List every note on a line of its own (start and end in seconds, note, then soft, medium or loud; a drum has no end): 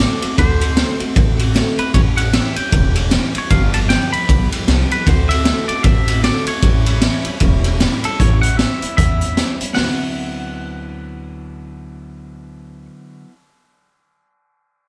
0.00 0.22 D3 medium
0.00 0.22 A3 medium
0.00 0.22 C4 medium
0.00 0.20 F#4 medium
0.00 0.38 D5 loud
0.21 0.37 A3 soft
0.21 0.38 C4 medium
0.21 0.38 F#4 medium
0.21 muted upright bass stroke medium
0.21 ride medium
0.38 0.82 D2 loud
0.38 0.61 D3 medium
0.38 0.61 A3 medium
0.38 0.61 C4 medium
0.38 0.59 F#4 medium
0.38 0.97 C5 medium
0.38 kick loud
0.38 ride medium
0.60 0.76 A3 soft
0.60 0.77 C4 medium
0.60 0.77 F#4 medium
0.60 ride medium
0.76 1.00 D3 medium
0.76 1.00 A3 medium
0.76 1.00 C4 medium
0.76 0.98 F#4 medium
0.76 snare loud
0.76 ride medium
0.99 1.15 A3 medium
0.99 1.16 C4 medium
0.99 1.16 F#4 medium
0.99 muted upright bass stroke medium
0.99 ride medium
1.15 1.60 A1 medium
1.15 1.39 D3 medium
1.15 1.39 A3 medium
1.15 1.38 C4 medium
1.15 1.36 F#4 medium
1.15 kick loud
1.15 ride medium
1.37 1.53 A3 soft
1.37 1.54 C4 medium
1.37 1.54 F#4 medium
1.37 ride medium
1.54 1.78 D3 medium
1.54 1.78 A3 loud
1.54 1.78 C4 loud
1.54 1.77 F#4 loud
1.54 snare loud
1.54 ride medium
1.78 1.94 A3 soft
1.78 1.95 C4 soft
1.78 1.94 F#4 medium
1.78 1.94 B4 medium
1.78 muted upright bass stroke medium
1.78 ride medium
1.93 2.38 A1 loud
1.93 2.17 A2 medium
1.93 2.17 E3 medium
1.93 2.18 G3 medium
1.93 2.17 C#4 medium
1.93 2.15 G4 medium
1.93 2.00 C#5 medium
1.93 kick loud
1.93 ride medium
2.16 2.33 G3 soft
2.16 2.33 C#4 soft
2.16 2.33 G4 medium
2.16 2.34 F#5 loud
2.16 ride medium
2.33 2.56 A2 medium
2.33 2.56 E3 medium
2.33 2.57 G3 loud
2.33 2.56 C#4 medium
2.33 2.55 G4 loud
2.33 2.56 E5 medium
2.33 snare loud
2.33 ride loud
2.56 2.72 G3 soft
2.56 2.73 C#4 medium
2.56 2.72 G4 medium
2.56 2.95 G5 medium
2.56 muted upright bass stroke medium
2.56 ride medium
2.72 3.16 E1 medium
2.72 2.95 E3 medium
2.72 2.96 G3 medium
2.72 2.95 C#4 medium
2.72 2.93 G4 medium
2.72 kick loud
2.72 ride medium
2.95 3.10 G3 soft
2.95 3.11 C#4 soft
2.95 3.11 G4 medium
2.95 ride medium
3.10 3.34 A2 medium
3.10 3.34 E3 loud
3.10 3.35 G3 medium
3.10 3.35 C#4 medium
3.10 3.33 G4 loud
3.10 snare loud
3.10 ride medium
3.34 3.51 G3 soft
3.34 3.51 C#4 medium
3.34 3.50 G4 medium
3.34 muted upright bass stroke medium
3.34 ride medium
3.38 3.53 C#5 medium
3.50 3.94 G1 loud
3.50 3.73 G2 medium
3.50 3.74 D3 medium
3.50 3.74 F3 medium
3.50 3.74 G3 medium
3.50 3.74 B3 medium
3.50 3.73 G4 medium
3.50 3.74 F5 medium
3.50 kick loud
3.50 ride medium
3.74 3.90 F3 medium
3.74 3.91 G3 medium
3.74 3.90 B3 medium
3.74 3.90 G4 medium
3.74 3.79 A5 loud
3.74 ride medium
3.89 4.13 G2 medium
3.89 4.13 D3 medium
3.89 4.14 F3 medium
3.89 4.14 G3 medium
3.89 4.14 B3 medium
3.89 4.13 G4 loud
3.89 4.12 G5 loud
3.89 snare loud
3.89 ride medium
4.13 4.30 B3 medium
4.13 4.29 G4 medium
4.13 4.49 B5 loud
4.13 muted upright bass stroke medium
4.13 ride medium
4.17 4.28 F3 soft
4.17 4.29 G3 medium
4.29 4.49 B1 medium
4.29 4.52 F3 medium
4.29 4.53 G3 medium
4.29 4.52 B3 medium
4.29 4.51 G4 medium
4.29 kick loud
4.29 ride medium
4.52 4.68 F3 soft
4.52 4.69 G3 medium
4.52 4.69 B3 medium
4.52 4.68 G4 medium
4.52 muted upright bass stroke medium
4.52 ride medium
4.68 4.87 C2 medium
4.68 4.91 G2 loud
4.68 4.92 D3 medium
4.68 4.92 F3 loud
4.68 4.92 G3 medium
4.68 4.91 B3 loud
4.68 4.90 G4 loud
4.68 snare loud
4.68 ride medium
4.91 5.06 F3 soft
4.91 5.07 G3 medium
4.91 5.07 B3 medium
4.91 5.07 G4 medium
4.91 5.06 B4 medium
4.91 muted upright bass stroke medium
4.91 ride medium
5.06 5.50 D2 loud
5.06 5.30 D3 medium
5.06 5.30 A3 medium
5.06 5.30 C4 medium
5.06 5.28 F#4 medium
5.06 5.31 C5 loud
5.06 kick loud
5.06 ride medium
5.29 5.45 A3 soft
5.29 5.46 C4 medium
5.29 5.46 F#4 medium
5.29 5.68 E5 loud
5.29 ride medium
5.45 5.69 D3 medium
5.45 5.69 A3 medium
5.45 5.69 C4 medium
5.45 5.67 F#4 medium
5.45 snare loud
5.45 ride medium
5.68 5.85 A3 soft
5.68 5.86 C4 soft
5.68 5.85 F#4 medium
5.68 5.83 D5 medium
5.68 muted upright bass stroke medium
5.68 ride medium
5.83 6.28 A1 medium
5.83 6.08 D3 medium
5.83 6.09 A3 medium
5.83 6.09 C4 medium
5.83 6.24 E5 loud
5.83 kick loud
5.83 ride medium
5.88 6.07 F#4 medium
6.08 6.24 A3 soft
6.08 6.24 C4 medium
6.08 6.24 F#4 medium
6.08 ride medium
6.24 6.47 D3 medium
6.24 6.48 A3 medium
6.24 6.48 C4 medium
6.24 6.46 F#4 medium
6.24 6.47 D5 medium
6.24 snare loud
6.24 ride medium
6.46 6.64 C4 medium
6.46 6.63 F#4 medium
6.46 7.77 C#5 medium
6.46 muted upright bass stroke medium
6.46 ride medium
6.51 6.64 A3 soft
6.62 7.06 A1 loud
6.62 6.86 A2 medium
6.62 6.87 E3 medium
6.62 6.87 G3 medium
6.62 6.87 C#4 medium
6.62 6.85 E4 medium
6.62 kick loud
6.62 ride medium
6.86 7.02 G3 medium
6.86 7.03 C#4 soft
6.86 7.02 E4 medium
6.86 ride medium
7.01 7.25 A2 medium
7.01 7.26 E3 loud
7.01 7.26 G3 loud
7.01 7.26 C#4 loud
7.01 7.23 E4 loud
7.01 snare loud
7.01 ride medium
7.25 7.41 G3 medium
7.25 7.42 C#4 medium
7.25 7.41 E4 medium
7.25 muted upright bass stroke medium
7.25 ride medium
7.40 7.85 E1 loud
7.40 7.64 E3 medium
7.40 7.65 G3 medium
7.40 7.65 C#4 medium
7.40 7.63 E4 medium
7.40 kick loud
7.40 ride medium
7.64 7.80 G3 soft
7.64 7.80 C#4 medium
7.64 7.80 E4 medium
7.64 ride medium
7.80 8.03 A2 medium
7.80 8.04 E3 loud
7.80 8.04 G3 loud
7.80 8.04 C#4 medium
7.80 8.02 E4 loud
7.80 snare loud
7.80 ride medium
8.04 8.20 G3 soft
8.04 8.21 C#4 medium
8.04 8.20 E4 medium
8.04 8.21 A4 medium
8.04 muted upright bass stroke medium
8.04 ride medium
8.20 8.63 A1 medium
8.20 8.43 A2 medium
8.20 8.44 E3 medium
8.20 8.44 G3 medium
8.20 8.43 C#4 medium
8.20 8.42 E4 medium
8.20 8.41 C#5 medium
8.20 kick loud
8.20 closed hi-hat medium
8.42 8.60 C#4 medium
8.42 8.59 E4 medium
8.42 8.57 F#5 loud
8.42 closed hi-hat medium
8.46 8.60 G3 soft
8.57 8.82 E3 medium
8.57 8.83 G3 medium
8.57 8.96 E5 loud
8.57 snare loud
8.57 closed hi-hat medium
8.61 8.83 C#4 medium
8.61 8.81 E4 medium
8.82 8.99 G3 soft
8.82 8.99 C#4 medium
8.82 8.98 E4 medium
8.82 muted upright bass stroke medium
8.82 closed hi-hat medium
8.97 9.42 E2 medium
8.97 9.22 A2 medium
8.97 9.22 E3 medium
8.97 9.22 G3 medium
8.97 9.22 C#4 loud
8.97 9.21 E4 medium
8.97 9.56 E5 medium
8.97 kick loud
8.97 closed hi-hat loud
9.21 9.38 C#4 soft
9.21 9.38 E4 medium
9.21 closed hi-hat medium
9.26 9.37 G3 soft
9.37 9.60 E3 medium
9.37 9.61 G3 medium
9.37 9.60 C#4 medium
9.37 9.59 E4 medium
9.37 snare loud
9.37 closed hi-hat medium
9.60 9.78 G3 soft
9.60 9.77 C#4 medium
9.60 9.76 E4 medium
9.60 muted upright bass stroke medium
9.60 closed hi-hat medium
9.74 12.87 D2 medium
9.74 13.24 D3 medium
9.74 13.27 F#3 medium
9.74 12.85 F#5 medium
9.74 snare loud
9.74 open hi-hat medium
9.79 13.32 B3 medium
9.79 13.29 C4 medium
9.84 13.34 E4 medium